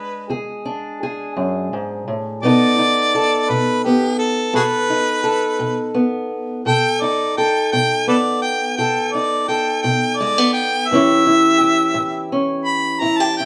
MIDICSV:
0, 0, Header, 1, 3, 480
1, 0, Start_track
1, 0, Tempo, 705882
1, 1643, Time_signature, 12, 3, 24, 8
1, 9147, End_track
2, 0, Start_track
2, 0, Title_t, "Harmonica"
2, 0, Program_c, 0, 22
2, 0, Note_on_c, 0, 71, 91
2, 176, Note_off_c, 0, 71, 0
2, 1649, Note_on_c, 0, 74, 101
2, 2379, Note_on_c, 0, 71, 84
2, 2389, Note_off_c, 0, 74, 0
2, 2604, Note_off_c, 0, 71, 0
2, 2612, Note_on_c, 0, 67, 80
2, 2840, Note_off_c, 0, 67, 0
2, 2846, Note_on_c, 0, 69, 77
2, 3077, Note_off_c, 0, 69, 0
2, 3096, Note_on_c, 0, 66, 61
2, 3096, Note_on_c, 0, 68, 61
2, 3096, Note_on_c, 0, 71, 87
2, 3142, Note_off_c, 0, 66, 0
2, 3142, Note_off_c, 0, 68, 0
2, 4022, Note_off_c, 0, 71, 0
2, 4537, Note_on_c, 0, 79, 93
2, 4767, Note_on_c, 0, 74, 77
2, 4778, Note_off_c, 0, 79, 0
2, 4998, Note_off_c, 0, 74, 0
2, 5011, Note_on_c, 0, 79, 73
2, 5240, Note_off_c, 0, 79, 0
2, 5249, Note_on_c, 0, 79, 85
2, 5479, Note_off_c, 0, 79, 0
2, 5495, Note_on_c, 0, 69, 50
2, 5495, Note_on_c, 0, 71, 50
2, 5495, Note_on_c, 0, 74, 72
2, 5545, Note_off_c, 0, 71, 0
2, 5551, Note_off_c, 0, 69, 0
2, 5719, Note_off_c, 0, 74, 0
2, 5723, Note_on_c, 0, 79, 71
2, 5956, Note_off_c, 0, 79, 0
2, 5959, Note_on_c, 0, 79, 72
2, 6203, Note_on_c, 0, 74, 73
2, 6213, Note_off_c, 0, 79, 0
2, 6436, Note_off_c, 0, 74, 0
2, 6446, Note_on_c, 0, 79, 73
2, 6673, Note_off_c, 0, 79, 0
2, 6677, Note_on_c, 0, 79, 82
2, 6911, Note_on_c, 0, 74, 82
2, 6921, Note_off_c, 0, 79, 0
2, 7150, Note_off_c, 0, 74, 0
2, 7160, Note_on_c, 0, 79, 83
2, 7397, Note_on_c, 0, 76, 104
2, 7407, Note_off_c, 0, 79, 0
2, 8335, Note_off_c, 0, 76, 0
2, 8602, Note_on_c, 0, 83, 87
2, 8840, Note_on_c, 0, 82, 79
2, 8850, Note_off_c, 0, 83, 0
2, 8958, Note_on_c, 0, 81, 79
2, 8968, Note_off_c, 0, 82, 0
2, 9074, Note_off_c, 0, 81, 0
2, 9088, Note_on_c, 0, 79, 70
2, 9147, Note_off_c, 0, 79, 0
2, 9147, End_track
3, 0, Start_track
3, 0, Title_t, "Steel-string acoustic guitar"
3, 0, Program_c, 1, 25
3, 0, Note_on_c, 1, 56, 54
3, 0, Note_on_c, 1, 62, 52
3, 0, Note_on_c, 1, 68, 57
3, 198, Note_off_c, 1, 68, 0
3, 201, Note_on_c, 1, 40, 68
3, 206, Note_on_c, 1, 68, 60
3, 437, Note_off_c, 1, 62, 0
3, 445, Note_on_c, 1, 62, 51
3, 634, Note_off_c, 1, 40, 0
3, 685, Note_off_c, 1, 68, 0
3, 701, Note_on_c, 1, 68, 59
3, 928, Note_on_c, 1, 42, 61
3, 1166, Note_off_c, 1, 42, 0
3, 1177, Note_on_c, 1, 44, 61
3, 1409, Note_off_c, 1, 44, 0
3, 1412, Note_on_c, 1, 45, 56
3, 1615, Note_off_c, 1, 62, 0
3, 1623, Note_off_c, 1, 68, 0
3, 1647, Note_off_c, 1, 56, 0
3, 1648, Note_off_c, 1, 45, 0
3, 1653, Note_on_c, 1, 47, 69
3, 1663, Note_on_c, 1, 59, 55
3, 1667, Note_on_c, 1, 63, 57
3, 1673, Note_on_c, 1, 69, 64
3, 1893, Note_off_c, 1, 63, 0
3, 1895, Note_on_c, 1, 63, 50
3, 2080, Note_off_c, 1, 47, 0
3, 2138, Note_off_c, 1, 69, 0
3, 2141, Note_on_c, 1, 69, 57
3, 2378, Note_on_c, 1, 47, 62
3, 2623, Note_off_c, 1, 59, 0
3, 2626, Note_on_c, 1, 59, 53
3, 2802, Note_off_c, 1, 47, 0
3, 3084, Note_off_c, 1, 69, 0
3, 3084, Note_on_c, 1, 47, 67
3, 3087, Note_on_c, 1, 69, 60
3, 3324, Note_off_c, 1, 63, 0
3, 3332, Note_on_c, 1, 63, 52
3, 3516, Note_off_c, 1, 47, 0
3, 3559, Note_off_c, 1, 69, 0
3, 3562, Note_on_c, 1, 69, 60
3, 3803, Note_on_c, 1, 47, 68
3, 4034, Note_off_c, 1, 59, 0
3, 4043, Note_on_c, 1, 59, 54
3, 4234, Note_off_c, 1, 47, 0
3, 4494, Note_off_c, 1, 59, 0
3, 4498, Note_off_c, 1, 63, 0
3, 4527, Note_on_c, 1, 47, 71
3, 4529, Note_off_c, 1, 69, 0
3, 4532, Note_on_c, 1, 69, 63
3, 4772, Note_on_c, 1, 63, 56
3, 4957, Note_off_c, 1, 47, 0
3, 5016, Note_off_c, 1, 69, 0
3, 5019, Note_on_c, 1, 69, 56
3, 5258, Note_on_c, 1, 47, 65
3, 5491, Note_on_c, 1, 59, 58
3, 5682, Note_off_c, 1, 47, 0
3, 5973, Note_off_c, 1, 69, 0
3, 5974, Note_on_c, 1, 47, 65
3, 5976, Note_on_c, 1, 69, 63
3, 6208, Note_off_c, 1, 63, 0
3, 6220, Note_on_c, 1, 63, 52
3, 6401, Note_off_c, 1, 47, 0
3, 6442, Note_off_c, 1, 69, 0
3, 6450, Note_on_c, 1, 69, 60
3, 6692, Note_on_c, 1, 47, 74
3, 6928, Note_off_c, 1, 59, 0
3, 6940, Note_on_c, 1, 56, 60
3, 7058, Note_off_c, 1, 56, 0
3, 7058, Note_on_c, 1, 59, 47
3, 7120, Note_off_c, 1, 47, 0
3, 7379, Note_off_c, 1, 69, 0
3, 7384, Note_off_c, 1, 63, 0
3, 7411, Note_off_c, 1, 59, 0
3, 7420, Note_on_c, 1, 45, 69
3, 7428, Note_on_c, 1, 52, 63
3, 7436, Note_on_c, 1, 61, 61
3, 7437, Note_on_c, 1, 64, 61
3, 7443, Note_on_c, 1, 67, 66
3, 7653, Note_off_c, 1, 64, 0
3, 7661, Note_on_c, 1, 64, 52
3, 7845, Note_off_c, 1, 45, 0
3, 7884, Note_off_c, 1, 67, 0
3, 7892, Note_on_c, 1, 67, 60
3, 8121, Note_on_c, 1, 45, 71
3, 8371, Note_off_c, 1, 61, 0
3, 8379, Note_on_c, 1, 61, 57
3, 8556, Note_off_c, 1, 45, 0
3, 8841, Note_off_c, 1, 64, 0
3, 8847, Note_on_c, 1, 45, 69
3, 8850, Note_off_c, 1, 67, 0
3, 8852, Note_on_c, 1, 64, 66
3, 8976, Note_off_c, 1, 64, 0
3, 8976, Note_on_c, 1, 67, 55
3, 9113, Note_on_c, 1, 64, 56
3, 9147, Note_off_c, 1, 45, 0
3, 9147, Note_off_c, 1, 52, 0
3, 9147, Note_off_c, 1, 61, 0
3, 9147, Note_off_c, 1, 64, 0
3, 9147, Note_off_c, 1, 67, 0
3, 9147, End_track
0, 0, End_of_file